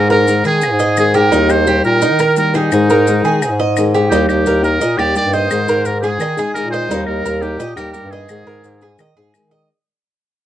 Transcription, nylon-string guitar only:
0.10 0.26 G#3 medium
0.10 0.27 D#4 medium
0.10 0.27 G#4 medium
0.27 0.61 D#3 medium
0.27 0.61 G#3 medium
0.27 0.60 D#4 medium
0.27 0.61 G#4 medium
0.62 muted nylon-string guitar stroke medium
0.97 1.14 D#3 soft
0.97 1.14 G#3 medium
0.97 1.14 D#4 medium
0.97 1.13 G#4 medium
1.14 1.32 G#3 medium
1.14 1.31 D#4 medium
1.14 1.31 G#4 medium
1.31 1.48 D#3 medium
1.31 1.49 G3 medium
1.31 1.49 A#3 medium
1.31 1.48 D#4 medium
1.31 1.47 G4 medium
1.48 1.66 G3 medium
1.48 1.66 A#3 medium
1.48 1.66 D#4 medium
1.48 1.66 G4 medium
1.67 2.00 G3 soft
1.67 2.01 A#3 medium
1.67 2.00 D#4 medium
1.67 2.01 G4 medium
2.02 muted nylon-string guitar stroke medium
2.37 2.53 G3 medium
2.37 2.54 A#3 medium
2.37 2.53 D#4 medium
2.37 2.53 G4 medium
2.54 2.71 G3 medium
2.54 2.71 A#3 medium
2.54 2.71 D#4 medium
2.54 2.71 G4 medium
2.72 2.88 D#3 medium
2.72 2.89 G#3 medium
2.72 2.89 D#4 medium
2.72 2.89 G#4 medium
2.90 3.07 G#3 medium
2.90 3.07 D#4 medium
2.90 3.06 G#4 medium
3.07 3.41 D#3 soft
3.07 3.41 G#3 medium
3.07 3.42 D#4 soft
3.07 3.42 G#4 medium
3.42 muted nylon-string guitar stroke medium
3.77 3.93 D#3 medium
3.77 3.94 G#3 medium
3.77 3.93 D#4 medium
3.77 3.93 G#4 medium
3.95 4.11 G#3 medium
3.95 4.11 D#4 medium
3.95 4.11 G#4 medium
4.11 4.63 D#3 medium
4.11 4.63 G3 medium
4.11 4.63 A#3 medium
4.11 4.62 D#4 medium
4.11 4.61 G4 medium
4.62 4.79 G3 medium
4.62 4.79 A#3 medium
4.62 4.79 D#4 medium
4.62 4.79 G4 medium
4.80 muted nylon-string guitar stroke medium
4.97 5.14 G3 medium
4.97 5.14 A#3 medium
4.97 5.15 D#4 medium
4.97 5.14 G4 medium
5.15 5.49 G3 soft
5.15 5.50 A#3 medium
5.15 5.49 D#4 medium
5.15 5.50 G4 medium
5.49 6.02 D#3 medium
5.49 6.02 G#3 medium
5.49 6.03 D#4 medium
5.49 6.02 G#4 medium
6.03 6.20 G#3 medium
6.03 6.20 D#4 medium
6.03 6.20 G#4 medium
6.21 muted nylon-string guitar stroke medium
6.37 6.54 G#3 medium
6.37 6.54 D#4 medium
6.37 6.54 G#4 medium
6.54 6.87 D#3 soft
6.54 6.89 G#3 medium
6.54 6.89 D#4 medium
6.54 6.90 G#4 medium
6.89 7.41 D#3 medium
6.89 7.41 G3 medium
6.89 7.43 A#3 medium
6.89 7.42 D#4 medium
6.89 7.41 G4 medium
7.42 7.59 G3 medium
7.42 7.59 A#3 medium
7.42 7.59 D#4 medium
7.42 7.59 G4 medium
7.60 muted nylon-string guitar stroke medium
7.76 7.93 G3 medium
7.76 7.93 A#3 medium
7.76 7.94 D#4 medium
7.76 7.93 G4 medium
7.94 8.29 G3 medium
7.94 8.29 A#3 medium
7.94 8.29 D#4 medium
7.94 8.29 G4 medium
8.29 8.81 D#3 medium
8.29 8.81 G#3 medium
8.29 8.81 D#4 medium
8.29 8.80 G#4 medium
8.82 8.99 G#3 medium
8.82 8.99 D#4 medium
8.82 8.99 G#4 medium
9.00 muted nylon-string guitar stroke medium
9.17 9.33 G#3 medium
9.17 9.34 D#4 medium
9.17 9.34 G#4 medium
9.34 9.68 D#3 medium
9.34 9.68 G#3 medium
9.34 9.69 D#4 medium
9.34 9.69 G#4 medium

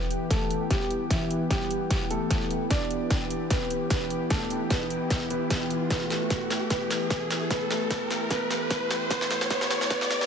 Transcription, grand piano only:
0.00 0.23 B3 medium
0.00 0.23 B4 loud
0.31 0.60 A3 medium
0.31 0.60 A4 medium
0.70 1.00 G3 medium
0.70 1.00 G4 medium
1.11 1.40 E3 medium
1.11 1.40 E4 medium
1.51 2.03 G3 medium
1.51 2.03 G4 medium
2.11 2.63 A3 medium
2.11 2.63 A4 loud
2.71 3.43 D4 medium
2.71 3.43 D5 loud
3.51 3.80 B3 medium
3.51 3.80 B4 medium
3.91 4.20 B3 medium
3.91 4.20 B4 medium
4.31 4.60 A3 medium
4.31 4.60 A4 medium
4.71 5.23 B3 medium
4.71 5.23 B4 medium
5.30 5.83 B3 medium
5.30 5.83 B4 medium
5.91 6.63 B3 medium
5.91 6.63 B4 medium
6.70 7.43 B3 medium
6.70 7.43 B4 medium
7.51 8.23 B3 medium
7.51 8.23 B4 medium
8.31 9.03 B3 medium
8.31 9.03 B4 loud
9.11 9.49 B3 medium
9.11 9.49 B4 medium
9.51 9.89 B3 medium
9.51 9.89 B4 loud
9.91 10.26 B3 medium
9.91 10.26 B4 loud

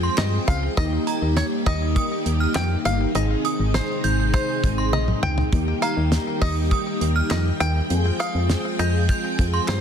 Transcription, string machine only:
0.00 0.75 F3 medium
0.00 0.75 G#3 medium
0.00 0.75 C4 medium
0.00 3.11 G5 medium
0.78 5.49 D#3 medium
0.78 3.13 G3 medium
0.78 3.13 A#3 medium
3.15 5.50 C3 medium
3.15 5.50 G#3 medium
3.15 5.50 D#4 medium
5.52 7.88 D#3 medium
5.52 7.88 G3 medium
5.52 7.88 A#3 medium
5.52 9.81 G5 medium
7.90 9.81 F3 medium
7.90 9.81 G#3 medium
7.90 9.81 C4 medium

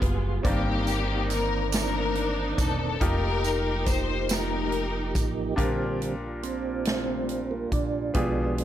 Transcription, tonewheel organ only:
0.00 0.45 G3 medium
0.00 0.45 B3 medium
0.00 0.44 F4 medium
0.00 0.45 G#4 medium
0.44 2.97 D#3 medium
0.44 2.97 A#3 medium
0.44 2.97 C4 medium
0.44 2.97 D5 medium
3.02 5.55 F3 medium
3.02 5.55 A#3 medium
3.02 5.55 D#4 medium
3.02 3.08 F4 medium
3.09 5.58 G4 medium
5.59 6.16 D3 soft
5.59 6.16 G3 soft
5.59 6.16 C4 medium
6.43 7.54 C4 medium
7.51 7.73 A#3 medium
7.73 8.64 D4 medium
8.15 8.64 F3 medium
8.15 8.64 G#3 soft
8.15 8.64 B3 medium

